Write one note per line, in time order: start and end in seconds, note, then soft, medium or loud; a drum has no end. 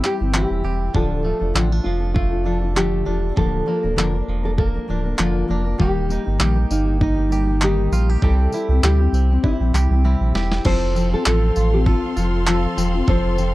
0.00 0.94 E3 medium
0.00 0.20 G3 medium
0.00 1.01 C4 medium
0.00 0.21 C4 medium
0.00 0.33 E4 medium
0.04 0.20 E4 medium
0.04 0.18 G4 medium
0.04 0.14 G4 medium
0.04 clap medium
0.20 0.46 G1 medium
0.20 0.33 C4 soft
0.20 0.34 E4 soft
0.20 0.34 G4 medium
0.33 0.64 E3 medium
0.33 0.62 G3 medium
0.33 0.63 C4 medium
0.33 0.64 E4 medium
0.33 0.65 G4 medium
0.33 0.95 G4 medium
0.33 clap loud
0.50 0.62 E1 medium
0.64 0.89 E1 medium
0.64 0.94 G3 medium
0.64 0.94 C4 medium
0.64 0.94 E4 medium
0.64 0.95 G4 medium
0.93 1.33 D1 loud
0.93 1.24 D3 medium
0.93 1.22 F3 medium
0.93 1.23 D4 medium
0.93 1.24 F4 medium
0.93 1.25 A4 medium
0.93 1.82 A4 medium
0.93 kick loud
1.23 1.41 F3 medium
1.23 2.15 A3 medium
1.23 1.41 D4 medium
1.23 1.40 F4 medium
1.23 1.38 A4 medium
1.40 1.53 F1 medium
1.40 1.54 D4 soft
1.40 1.54 F4 soft
1.40 1.54 A4 medium
1.54 1.80 A1 loud
1.54 1.71 D3 medium
1.54 1.72 F3 medium
1.54 1.72 C4 medium
1.54 1.71 D4 medium
1.54 1.70 F4 medium
1.54 1.69 A4 medium
1.54 clap loud
1.70 2.02 D4 soft
1.70 2.01 F4 soft
1.70 1.99 A4 soft
1.84 3.03 F1 medium
1.84 3.36 F3 medium
1.84 2.13 F4 medium
2.00 2.32 D4 soft
2.00 2.31 F4 soft
2.00 2.29 A4 medium
2.14 2.75 A3 medium
2.14 2.76 F4 medium
2.14 kick loud
2.31 2.43 D4 soft
2.31 2.44 F4 soft
2.31 2.45 A4 medium
2.44 2.62 F3 medium
2.44 2.62 D4 medium
2.44 2.61 F4 medium
2.44 2.60 A4 medium
2.61 2.75 D4 soft
2.61 2.75 F4 soft
2.61 2.76 A4 medium
2.75 3.06 D3 medium
2.75 3.04 F3 medium
2.75 3.44 A3 medium
2.75 3.05 D4 medium
2.75 3.06 F4 medium
2.75 3.37 G4 medium
2.75 3.06 A4 medium
2.75 clap loud
3.05 3.32 E1 medium
3.05 3.23 F3 medium
3.05 3.22 D4 medium
3.05 3.21 F4 medium
3.05 3.20 A4 medium
3.21 3.36 D4 soft
3.21 3.37 F4 soft
3.21 3.36 A4 soft
3.36 3.62 D1 loud
3.36 3.67 D3 medium
3.36 3.65 F3 medium
3.36 3.65 A#3 medium
3.36 3.66 D4 medium
3.36 3.97 A4 loud
3.36 kick medium
3.66 3.83 F3 medium
3.66 3.84 A#3 medium
3.66 3.82 D4 medium
3.66 3.81 A#4 medium
3.83 3.96 D1 loud
3.83 3.96 A#3 soft
3.83 3.96 D4 medium
3.83 3.97 A#4 medium
3.96 4.23 F1 medium
3.96 4.14 D3 medium
3.96 4.14 F3 medium
3.96 4.14 A#3 medium
3.96 4.13 D4 medium
3.96 4.42 A#4 medium
3.96 4.11 A#4 medium
3.96 clap medium
4.13 4.44 A#3 soft
4.13 4.43 D4 soft
4.13 4.42 A#4 soft
4.28 4.78 E1 medium
4.28 5.87 F3 medium
4.43 4.75 A#3 soft
4.43 4.74 D4 soft
4.43 4.50 A4 medium
4.43 4.73 A#4 medium
4.58 5.20 A#3 medium
4.58 5.03 A#4 loud
4.58 kick loud
4.74 4.87 A#3 soft
4.74 4.88 D4 soft
4.74 4.88 A#4 soft
4.88 5.14 D1 medium
4.88 5.05 F3 medium
4.88 5.05 A#3 medium
4.88 5.04 D4 medium
4.88 5.02 A#4 medium
5.03 5.17 A#3 soft
5.03 5.18 D4 soft
5.03 5.21 A4 loud
5.03 5.18 A#4 soft
5.18 5.44 F1 loud
5.18 5.49 D3 medium
5.18 5.46 F3 medium
5.18 5.47 A#3 medium
5.18 5.48 D4 medium
5.18 5.82 F4 medium
5.18 5.49 A#4 medium
5.18 clap loud
5.48 5.75 F1 medium
5.48 5.65 F3 medium
5.48 5.66 A#3 medium
5.48 5.65 D4 medium
5.48 5.63 A#4 medium
5.65 5.78 A#3 soft
5.65 5.79 D4 soft
5.65 5.79 A#4 medium
5.78 6.18 D#1 loud
5.78 6.09 D#3 medium
5.78 6.07 G3 medium
5.78 6.08 A#3 medium
5.78 6.09 D#4 medium
5.78 6.67 G4 loud
5.78 6.10 G4 medium
5.78 kick medium
6.09 6.26 G3 medium
6.09 6.26 A#3 medium
6.09 6.25 D#4 medium
6.09 6.23 G4 medium
6.09 tambourine medium
6.25 6.38 G1 loud
6.25 6.38 A#3 soft
6.25 6.39 D#4 soft
6.25 6.39 G4 medium
6.38 6.65 A#1 medium
6.38 6.56 D#3 medium
6.38 6.57 G3 medium
6.38 6.56 A#3 medium
6.38 6.55 D#4 medium
6.38 6.54 G4 medium
6.38 clap loud
6.55 6.87 A#3 soft
6.55 6.86 D#4 soft
6.55 6.84 G4 medium
6.71 7.88 G1 medium
6.71 8.30 A#3 medium
6.71 7.00 D#4 medium
6.71 tambourine medium
6.85 7.17 A#3 soft
6.85 7.16 D#4 soft
6.85 7.14 G4 medium
7.01 7.64 D#4 medium
7.01 7.62 D#4 medium
7.01 kick loud
7.16 7.30 A#3 soft
7.16 7.30 D#4 soft
7.16 7.30 G4 medium
7.29 7.47 G3 medium
7.29 7.48 A#3 medium
7.29 7.47 D#4 medium
7.29 7.46 G4 medium
7.29 tambourine medium
7.47 7.61 A#3 soft
7.47 7.61 D#4 soft
7.47 7.62 G4 medium
7.61 7.92 D#3 medium
7.61 7.90 G3 medium
7.61 7.92 A#3 medium
7.61 7.92 D#4 medium
7.61 7.93 G4 medium
7.61 8.23 G4 medium
7.61 clap loud
7.92 8.17 A#1 medium
7.92 8.09 G3 medium
7.92 8.09 A#3 medium
7.92 8.09 D#4 medium
7.92 8.10 F4 medium
7.92 8.08 G4 medium
7.92 tambourine medium
8.09 8.23 A#3 soft
8.09 8.23 D#4 soft
8.09 8.23 G4 soft
8.22 8.47 C2 loud
8.22 8.53 C3 medium
8.22 8.51 G3 medium
8.22 8.52 C4 medium
8.22 8.53 E4 medium
8.22 8.54 G4 medium
8.22 8.83 A4 medium
8.22 kick loud
8.52 8.69 G3 medium
8.52 8.70 C4 medium
8.52 8.70 E4 medium
8.52 8.69 G4 medium
8.52 tambourine medium
8.69 8.80 C2 loud
8.69 8.83 C4 soft
8.69 8.84 E4 soft
8.69 8.83 G4 medium
8.83 9.08 D2 medium
8.83 9.00 C3 medium
8.83 9.01 G3 medium
8.83 9.01 C4 medium
8.83 9.00 E4 medium
8.83 9.40 G4 medium
8.83 8.99 G4 medium
8.83 clap loud
9.00 9.31 C4 soft
9.00 9.31 E4 soft
9.00 9.29 G4 soft
9.13 9.38 C2 medium
9.13 10.96 C4 medium
9.13 tambourine medium
9.31 9.61 C4 soft
9.31 9.60 E4 medium
9.31 9.59 G4 medium
9.43 10.31 E4 medium
9.43 10.04 E4 medium
9.43 kick loud
9.60 9.72 A#1 medium
9.60 9.73 C4 soft
9.60 9.74 E4 soft
9.60 9.74 G4 medium
9.73 9.88 C2 medium
9.73 9.91 G3 medium
9.73 9.91 C4 medium
9.73 9.91 E4 medium
9.73 9.89 G4 medium
9.73 clap medium
9.73 tambourine medium
9.90 10.16 C2 loud
9.90 10.04 C4 soft
9.90 10.04 E4 soft
9.90 10.04 G4 soft
10.04 10.35 C3 medium
10.04 10.33 G3 medium
10.04 10.34 C4 medium
10.04 10.34 E4 medium
10.04 10.35 G4 medium
10.21 10.32 A#1 medium
10.34 10.60 E1 medium
10.34 10.64 G3 medium
10.34 10.64 C4 medium
10.34 10.66 E4 medium
10.34 10.66 G4 medium
10.34 snare medium
10.52 snare medium
10.65 11.15 F1 loud
10.65 10.94 F3 medium
10.65 10.95 C4 medium
10.65 10.95 F4 medium
10.65 13.54 A4 medium
10.65 10.96 A4 medium
10.65 11.13 C5 loud
10.65 13.54 C5 medium
10.65 13.54 F5 medium
10.65 13.54 C6 medium
10.65 kick medium
10.65 crash loud
10.95 11.12 F3 medium
10.95 11.12 C4 medium
10.95 11.12 F4 medium
10.95 11.10 A4 medium
10.95 tambourine medium
11.12 11.25 C4 soft
11.12 11.25 F4 soft
11.12 11.26 A4 medium
11.12 11.25 A4 medium
11.25 11.51 A1 loud
11.25 11.73 F3 medium
11.25 11.73 C4 medium
11.25 11.72 F4 medium
11.25 11.75 A4 medium
11.25 11.71 A4 medium
11.25 clap loud
11.56 11.95 A1 medium
11.56 12.15 F4 medium
11.56 tambourine medium
11.72 12.04 C4 soft
11.72 12.03 F4 medium
11.72 11.79 G4 medium
11.72 12.01 A4 medium
11.86 12.44 F4 medium
11.86 12.46 A4 medium
11.86 kick loud
12.03 12.16 C4 soft
12.03 12.17 F4 soft
12.03 12.17 A4 medium
12.17 12.67 F1 medium
12.17 12.46 F3 medium
12.17 12.47 C4 medium
12.17 12.47 F4 medium
12.17 12.48 A4 medium
12.17 tambourine medium
12.47 12.76 F3 medium
12.47 12.77 C4 medium
12.47 12.91 F4 medium
12.47 12.78 F4 medium
12.47 12.78 A4 medium
12.47 clap loud
12.77 13.02 E1 medium
12.77 12.94 F3 medium
12.77 12.95 C4 medium
12.77 12.94 F4 medium
12.77 12.93 A4 medium
12.77 tambourine medium
12.94 13.08 C4 soft
12.94 13.08 F4 medium
12.94 13.08 A4 medium
13.08 13.54 F1 loud
13.08 13.36 F3 medium
13.08 13.38 C4 medium
13.08 13.38 F4 medium
13.08 13.39 A4 medium
13.08 13.54 C5 loud
13.08 kick loud
13.38 13.54 F3 medium
13.38 13.54 C4 medium
13.38 13.54 F4 medium
13.38 13.53 A4 medium
13.38 tambourine medium